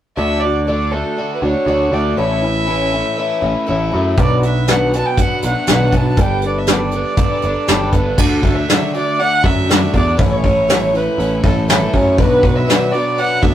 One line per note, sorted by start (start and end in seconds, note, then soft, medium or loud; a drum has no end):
0.17 1.01 D2 medium
0.17 0.42 D3 medium
0.17 0.43 A3 medium
0.17 0.43 D4 medium
0.17 0.41 F#4 medium
0.17 0.41 E5 medium
0.40 0.67 D4 soft
0.40 0.68 F#4 soft
0.40 0.66 D5 medium
0.45 0.67 A3 soft
0.66 0.92 D3 medium
0.66 0.93 A3 medium
0.66 0.92 D4 medium
0.66 0.91 F#4 medium
0.66 0.93 D5 medium
0.92 1.17 A3 soft
0.92 1.17 D4 soft
0.92 1.17 F#4 soft
0.92 1.34 A4 medium
1.17 1.42 D3 soft
1.17 1.43 A3 soft
1.17 1.43 D4 soft
1.17 1.41 F#4 medium
1.35 1.45 B4 medium
1.42 1.53 D2 medium
1.42 1.67 A3 soft
1.42 1.67 D4 soft
1.42 1.67 F#4 soft
1.42 1.94 C#5 medium
1.66 1.88 D2 medium
1.66 1.93 D3 medium
1.66 1.93 A3 medium
1.66 1.93 D4 medium
1.66 1.92 F#4 medium
1.92 2.13 D2 medium
1.92 2.17 D4 soft
1.92 2.18 F#4 soft
1.92 2.17 D5 medium
1.96 2.17 A3 soft
2.17 3.01 A1 medium
2.17 2.42 A2 medium
2.17 2.43 E3 medium
2.17 2.43 A3 medium
2.17 2.43 C#4 medium
2.17 2.41 E4 medium
2.17 3.89 E5 loud
2.42 2.66 A3 soft
2.42 2.66 C#4 soft
2.42 2.67 E4 soft
2.66 2.92 A2 medium
2.66 2.92 E3 medium
2.66 2.93 A3 medium
2.66 2.92 C#4 medium
2.66 2.91 E4 medium
2.92 3.16 A3 soft
2.92 3.17 C#4 soft
2.92 3.17 E4 medium
3.16 3.42 E3 medium
3.16 3.43 A3 medium
3.16 3.41 C#4 medium
3.16 3.40 E4 medium
3.41 3.53 A1 medium
3.41 3.66 A3 soft
3.41 3.67 C#4 soft
3.41 3.67 E4 soft
3.66 3.89 A1 medium
3.66 3.92 A2 medium
3.66 3.92 E3 medium
3.66 3.93 A3 medium
3.66 3.92 C#4 medium
3.66 3.90 E4 medium
3.92 4.14 F#2 medium
3.92 4.17 A3 soft
3.92 4.18 C#4 medium
3.92 4.17 E4 medium
4.17 5.01 B1 medium
4.17 4.42 B2 medium
4.17 4.43 F#3 medium
4.17 4.43 B3 medium
4.17 4.43 D4 medium
4.17 4.42 F#4 medium
4.17 4.42 D5 medium
4.17 kick loud
4.17 closed hi-hat medium
4.43 4.67 B3 soft
4.43 4.68 D4 soft
4.43 4.68 F#4 soft
4.43 4.71 E5 medium
4.43 closed hi-hat medium
4.67 4.92 B2 medium
4.67 4.93 F#3 medium
4.67 4.93 B3 medium
4.67 4.93 D4 medium
4.67 4.92 F#4 medium
4.67 4.94 F#5 medium
4.67 snare medium
4.67 closed hi-hat medium
4.93 5.18 B3 soft
4.93 5.19 D4 soft
4.93 5.18 F#4 soft
4.93 5.08 A5 medium
4.93 closed hi-hat medium
5.06 5.22 G5 medium
5.17 5.43 F#3 soft
5.17 5.44 B3 medium
5.17 5.44 D4 soft
5.17 5.43 F#4 medium
5.17 5.44 F#5 loud
5.17 kick medium
5.17 closed hi-hat medium
5.42 5.53 B1 medium
5.42 5.69 D4 soft
5.42 5.68 F#4 soft
5.42 5.98 F#5 medium
5.42 closed hi-hat medium
5.46 5.70 B3 soft
5.67 5.89 B1 medium
5.67 5.94 B2 medium
5.67 5.94 F#3 medium
5.67 5.94 B3 medium
5.67 snare medium
5.67 closed hi-hat medium
5.71 5.94 D4 medium
5.71 5.93 F#4 medium
5.92 6.14 B1 medium
5.92 6.19 D4 soft
5.92 6.18 F#4 soft
5.92 6.22 A5 medium
5.92 kick medium
5.92 closed hi-hat medium
5.97 6.18 B3 soft
6.17 7.01 G1 medium
6.17 6.43 G3 medium
6.17 6.44 B3 medium
6.17 6.44 D4 medium
6.17 6.44 G5 medium
6.17 kick medium
6.17 closed hi-hat medium
6.21 6.42 A4 medium
6.41 6.69 D4 soft
6.41 6.68 A4 soft
6.41 closed hi-hat medium
6.46 6.68 B3 soft
6.46 6.60 D5 medium
6.58 6.72 E5 medium
6.67 6.93 G3 medium
6.67 6.93 B3 medium
6.67 6.94 D4 medium
6.67 6.92 A4 medium
6.67 snare medium
6.67 closed hi-hat medium
6.71 7.93 D5 medium
6.91 7.18 D4 soft
6.91 7.18 A4 soft
6.91 closed hi-hat soft
6.96 7.18 B3 soft
7.17 7.43 G3 soft
7.17 7.43 B3 soft
7.17 7.44 D4 medium
7.17 7.42 A4 medium
7.17 kick loud
7.17 closed hi-hat medium
7.42 7.54 G1 medium
7.42 7.68 D4 soft
7.42 7.68 A4 soft
7.42 closed hi-hat medium
7.46 7.67 B3 soft
7.67 7.89 G1 medium
7.67 7.92 G3 medium
7.67 7.93 B3 medium
7.67 7.93 D4 medium
7.67 7.92 A4 medium
7.67 snare medium
7.67 closed hi-hat medium
7.92 8.14 G1 medium
7.92 8.18 D4 medium
7.92 8.18 A4 medium
7.92 8.20 B4 medium
7.92 kick medium
7.92 closed hi-hat soft
7.96 8.18 B3 soft
8.18 8.39 D2 medium
8.18 8.43 D3 medium
8.18 8.43 A3 medium
8.18 8.42 D4 medium
8.18 8.41 F#4 medium
8.18 8.56 A4 medium
8.18 kick loud
8.18 crash medium
8.42 8.64 D2 medium
8.42 8.68 A3 soft
8.42 8.68 D4 soft
8.42 8.67 F#4 soft
8.42 kick medium
8.42 open hi-hat soft
8.55 8.92 E5 medium
8.68 8.93 D3 medium
8.68 8.94 A3 medium
8.68 8.94 D4 medium
8.68 8.93 F#4 medium
8.68 snare medium
8.68 open hi-hat medium
8.94 9.19 A3 soft
8.94 9.19 D4 soft
8.94 9.18 F#4 soft
8.94 9.21 D5 medium
8.94 open hi-hat soft
9.19 9.44 D3 soft
9.19 9.44 A3 medium
9.19 9.44 D4 soft
9.19 9.43 F#4 medium
9.19 9.46 F#5 loud
9.19 open hi-hat medium
9.44 9.85 F#2 medium
9.44 9.67 A3 soft
9.44 9.68 D4 soft
9.44 9.68 F#4 soft
9.44 9.94 E5 loud
9.44 kick medium
9.44 open hi-hat soft
9.67 9.93 D3 medium
9.67 9.93 A3 medium
9.67 9.93 D4 medium
9.67 9.91 F#4 medium
9.67 snare medium
9.67 open hi-hat medium
9.92 10.14 E2 medium
9.92 10.17 A3 soft
9.92 10.18 D4 medium
9.92 10.18 F#4 soft
9.92 10.18 D5 medium
9.92 kick medium
9.92 open hi-hat soft
10.17 10.39 A1 medium
10.17 10.42 A2 medium
10.17 10.42 E3 medium
10.17 10.43 A3 medium
10.17 10.43 C#4 medium
10.17 10.41 E4 medium
10.17 kick loud
10.17 open hi-hat medium
10.22 10.97 C#5 loud
10.42 11.06 A1 medium
10.42 10.68 E3 medium
10.42 10.67 A3 soft
10.42 10.68 C#4 soft
10.42 10.68 E4 soft
10.42 kick medium
10.42 open hi-hat soft
10.68 10.93 A2 medium
10.68 10.93 E3 medium
10.68 10.93 A3 medium
10.68 10.93 C#4 medium
10.68 10.92 E4 medium
10.68 snare medium
10.68 open hi-hat medium
10.93 11.17 A3 soft
10.93 11.18 C#4 soft
10.93 11.18 E4 soft
10.93 11.44 B4 loud
10.93 open hi-hat soft
11.17 11.39 A1 medium
11.17 11.42 E3 soft
11.17 11.43 A3 medium
11.17 11.43 C#4 medium
11.17 11.41 E4 medium
11.17 open hi-hat medium
11.43 11.85 A1 medium
11.43 11.67 A3 soft
11.43 11.68 C#4 soft
11.43 11.68 E4 soft
11.43 11.68 A4 medium
11.43 kick medium
11.43 open hi-hat soft
11.68 11.93 A2 medium
11.68 11.93 E3 medium
11.68 11.93 A3 medium
11.68 11.93 C#4 medium
11.68 11.91 E4 medium
11.68 snare loud
11.68 open hi-hat medium
11.73 11.98 A4 medium
11.92 12.20 F#2 medium
11.92 12.19 A3 soft
11.92 12.18 C#4 soft
11.92 12.17 E4 soft
11.92 12.19 C#5 medium
11.92 kick medium
11.92 open hi-hat soft
12.18 12.39 B1 medium
12.18 12.43 B2 medium
12.18 12.43 F#3 medium
12.18 12.43 B3 medium
12.18 12.43 D4 medium
12.18 12.42 F#4 medium
12.18 12.57 B4 loud
12.18 kick loud
12.18 open hi-hat medium
12.43 12.64 B1 medium
12.43 12.66 F#3 medium
12.43 12.67 B3 soft
12.43 12.68 D4 soft
12.43 12.68 F#4 medium
12.43 kick medium
12.43 open hi-hat soft
12.56 12.93 E5 loud
12.67 12.92 B2 medium
12.67 12.93 F#3 medium
12.67 12.93 B3 medium
12.67 12.93 D4 medium
12.67 12.91 F#4 medium
12.67 snare medium
12.67 open hi-hat medium
12.92 13.17 B3 soft
12.92 13.18 D4 soft
12.92 13.17 F#4 soft
12.92 13.20 D5 medium
12.92 open hi-hat soft
13.17 13.42 F#3 medium
13.17 13.43 B3 soft
13.17 13.43 D4 medium
13.17 13.42 F#4 medium
13.17 13.43 F#5 loud
13.17 open hi-hat medium
13.42 13.54 D2 medium
13.42 13.54 B3 soft
13.42 13.54 D4 soft
13.42 13.54 F#4 soft
13.42 13.54 E5 medium
13.42 kick medium
13.42 open hi-hat soft